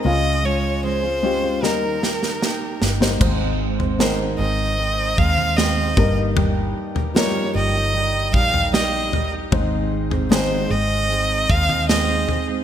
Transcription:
<<
  \new Staff \with { instrumentName = "Violin" } { \time 4/4 \key aes \major \tempo 4 = 76 ees''8 des''8 c''4 bes'4. r8 | r4 c''8 ees''4 f''8 ees''8. r16 | r4 des''8 ees''4 f''8 ees''8. r16 | r4 c''8 ees''4 f''8 ees''8. r16 | }
  \new Staff \with { instrumentName = "Steel-string acoustic guitar" } { \time 4/4 \key aes \major <des aes des' f' aes'>8 <aes des' f' aes'>8 <des aes des' f' aes'>16 <des' f' aes'>16 <aes des' f' aes'>16 <des' f' aes'>16 <ees bes ees' g' bes'>16 <ees' g' bes'>16 <bes ees' g' bes'>16 <ees' g' bes'>16 <ees bes ees' g' bes'>8 <bes ees' g' bes'>8 | <aes, ees aes c' ees' c''>8. <aes c' ees' c''>16 <aes, ees aes c' ees' c''>8 <aes c' ees' c''>8 <aes c' ees' c''>8 <aes c' ees' c''>8 <aes, ees aes c' ees' c''>8 <g ees' g' bes'>16 <ees' g' bes'>16 | <g ees' g' bes'>8. <ees' g' bes'>16 <g ees' g' bes'>16 <ees' g' bes'>16 <g ees' g' bes'>16 <ees' g' bes'>16 <g ees' g' bes'>8 <g ees' g' bes'>8 <g ees' g' bes'>8 <g ees' g' bes'>16 <ees' g' bes'>16 | <aes, ees aes c' ees' aes'>8. <aes c' ees' aes'>16 <aes, ees aes c' ees' aes'>8 <aes c' ees' aes'>8 <aes c' ees' aes'>8 <aes c' ees' aes'>8 <aes, ees aes c' ees' aes'>8 <aes c' ees' aes'>16 <aes c' ees' aes'>16 | }
  \new Staff \with { instrumentName = "Grand piano" } { \time 4/4 \key aes \major <aes des' f' f''>4. <aes des' f' g'>8 <g bes ees' bes'>4.~ <g bes ees' bes'>16 <g bes ees' c''>16 | <aes c' ees' c''>4 <aes c' ees' bes'>2 r8 <g bes ees' bes'>8~ | <g bes ees' bes'>4 <f g bes ees' bes'>2 r4 | <aes c' ees' c''>4 <aes c' ees' aes'>2 r4 | }
  \new Staff \with { instrumentName = "Grand piano" } { \clef bass \time 4/4 \key aes \major des4. r8 ees4. r8 | aes,4. r2 g,8~ | g,4 r2. | aes,4. r2 r8 | }
  \new Staff \with { instrumentName = "Fingered electric bass" } { \clef bass \time 4/4 \key aes \major des,2 ees,4. g,,8 | aes,,4. aes,,4 ees,4 g,,8~ | g,,8 r4 g,,4 bes,,4. | aes,,4. aes,,4 ees,4 r8 | }
  \new DrumStaff \with { instrumentName = "Drums" } \drummode { \time 4/4 r4 r4 sn8 sn16 sn16 sn8 sn16 sn16 | <cymc bd tomfh>8. tomfh16 sn4 r8 bd16 tomfh16 sn8 <bd tomfh>8 | tomfh8. tomfh16 sn4 r8 bd16 tomfh16 sn8 tomfh8 | <bd tomfh>8. tomfh16 sn4 r8 bd16 tomfh16 sn8 tomfh8 | }
>>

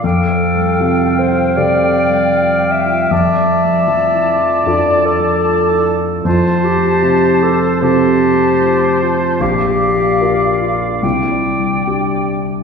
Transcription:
<<
  \new Staff \with { instrumentName = "Flute" } { \time 4/4 \key f \major \tempo 4 = 76 g''1 | a''1 | a''2 a''2 | f''2 g''4. r8 | }
  \new Staff \with { instrumentName = "Oboe" } { \time 4/4 \key f \major f''1 | d''1 | c''2 c''2 | d''2 d''4. r8 | }
  \new Staff \with { instrumentName = "Clarinet" } { \time 4/4 \key f \major a'4. c''8 d''4. e''8~ | e''2 d''8 a'4. | f'8 g'4 a'8 g'4. f'8 | g'4. f'8 e'4 r4 | }
  \new Staff \with { instrumentName = "Harp" } { \time 4/4 \key f \major \tuplet 3/2 { <f, f f' g'>8 c''8 g8 f'8 c'8 f'8 c8 c''8 g8 f'8 c'8 f'8 } | \tuplet 3/2 { f,8 d''8 a8 f'8 e'8 f'8 f,8 d''8 a8 f'8 e'8 f'8 } | \tuplet 3/2 { f,8 c''8 a8 f'8 e'8 f'8 c8 c''8 a8 f'8 e''8 f'8 } | \tuplet 3/2 { bes,8 d''8 bes8 d'8 c'8 d'8 c8 d''8 g8 d'8 c'8 d'8 } | }
  \new Staff \with { instrumentName = "Grand piano" } { \time 4/4 \key f \major f,4 c4 <c' g' a'>2 | f,4 f4 <d' f' a'>2 | f,4 c4 <c' f' a'>2 | bes,,4 <f' bes'>4 c,4 <d' g'>4 | }
>>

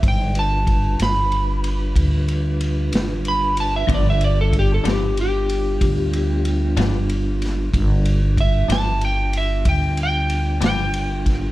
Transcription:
<<
  \new Staff \with { instrumentName = "Electric slide guitar" } { \time 12/8 \key g \mixolydian \tempo 4. = 62 g''8 a''4 b''2. r8 b''8 a''16 e''16 | d''16 e''16 d''16 a'16 g'16 a'16 g'8 g'2. r4 | r4 e''8 a''8 g''8 e''8 g''8 g''4 g''4. | }
  \new Staff \with { instrumentName = "Tonewheel organ" } { \time 12/8 \key g \mixolydian <fis aes ees' c''>8 <g d' f' b'>1~ <g d' f' b'>4. | <g b d' f'>1. | <g b d' f'>1. | }
  \new Staff \with { instrumentName = "Clean electric guitar" } { \clef bass \time 12/8 \key g \mixolydian r1. | <g, f b d'>8 r4 <g, f b d'>8 r2 r8 <g, f b d'>8 r4 | r4. <g, f b d'>8 r2 r8 <g, f b d'>8 r4 | }
  \new Staff \with { instrumentName = "Upright bass" } { \clef bass \time 12/8 \key g \mixolydian g,,4. g,,4. d,4. g,,4. | g,,4. g,,4. d,4. g,,4. | g,,4. g,,4. d,4. g,,4. | }
  \new DrumStaff \with { instrumentName = "Drums" } \drummode { \time 12/8 <bd cymr>8 cymr8 <bd cymr>8 <cymr sn>8 cymr8 cymr8 <bd cymr>8 cymr8 cymr8 <cymr sn>8 cymr8 cymr8 | <bd cymr>8 cymr8 <bd cymr>8 <cymr sn>8 cymr8 cymr8 <bd cymr>8 cymr8 cymr8 <cymr sn>8 cymr8 <cymr sn>8 | <bd cymr>8 cymr8 <bd cymr>8 <cymr sn>8 cymr8 cymr8 <bd cymr>8 cymr8 cymr8 <cymr sn>8 cymr8 <bd cymr sn>8 | }
>>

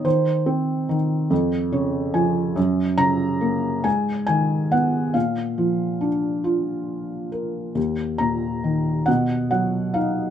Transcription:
<<
  \new Staff \with { instrumentName = "Felt piano" } { \time 6/8 \key bes \phrygian \tempo 4. = 46 c''4 r4 des''8 aes''8 | r8 bes''4 aes''8 aes''8 ges''8 | f''4 r2 | r8 bes''4 fis''8 fis''8 f''8 | }
  \new Staff \with { instrumentName = "Felt piano" } { \clef bass \time 6/8 \key bes \phrygian ees8 c'8 ees8 f,8 des8 f8 | ges,8 des8 bes8 aes,8 ees8 ces'8 | bes,8 f8 d'8 f'4 bes'8 | ees,8 bes,8 ees8 b,8 fis8 dis'8 | }
>>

